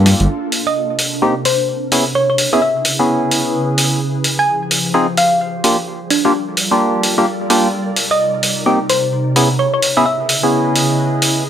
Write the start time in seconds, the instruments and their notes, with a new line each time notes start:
Already playing: detuned saw bass G2, ambient pad A#3 D4 F4 A4, synth stab A#3 D4 F4 G4
0.06 snare, open hi-hat
0.20 detuned saw bass G1, closed hi-hat
0.29 ambient pad C3 D4 G4 A#4
0.52 open hi-hat
0.67 synth pluck D#5
0.99 open hi-hat
1.22 synth stab A#3 C4 D#4 G4
1.45 synth pluck C5, open hi-hat
1.92 ambient pad C#3 E4 G#4 B4, synth stab B3 C#4 E4 G#4, open hi-hat
2.15 synth pluck C#5
2.30 synth pluck C#5
2.38 open hi-hat
2.53 synth stab B3 C#4 E4 G#4, synth pluck E5
2.62 synth pluck E5
2.85 open hi-hat
2.99 synth stab B3 C#4 E4 G#4
3.31 open hi-hat
3.78 open hi-hat
4.01 ambient pad F3 G4 C5
4.24 open hi-hat
4.39 synth pluck G#5
4.71 open hi-hat
4.94 synth stab C4 D#4 F4 G#4
5.17 synth pluck F5, open hi-hat
5.64 ambient pad G3 F4 A4 A#4 D5, synth stab A#3 D4 F4 G4, open hi-hat
6.10 synth pluck D4, open hi-hat
6.25 synth stab A#3 D4 F4 G4, synth pluck D4
6.57 open hi-hat
6.71 synth stab A#3 D4 F4 G4
7.03 open hi-hat
7.18 synth stab A#3 D4 F4 G4
7.50 synth stab A#3 D4 F4 G4, open hi-hat
7.73 ambient pad C3 D#4 G4
7.96 open hi-hat
8.11 synth pluck D#5
8.43 open hi-hat
8.66 synth stab A#3 C4 D#4 G4
8.90 synth pluck C5, open hi-hat
9.36 ambient pad C#3 E4 G#4 B4 D#5, synth stab B3 C#4 E4 G#4, open hi-hat
9.59 synth pluck C#5
9.74 synth pluck C#5
9.82 open hi-hat
9.97 synth stab B3 C#4 E4 G#4, synth pluck E5
10.06 synth pluck E5
10.29 open hi-hat
10.43 synth stab B3 C#4 E4 G#4
10.76 open hi-hat
11.22 open hi-hat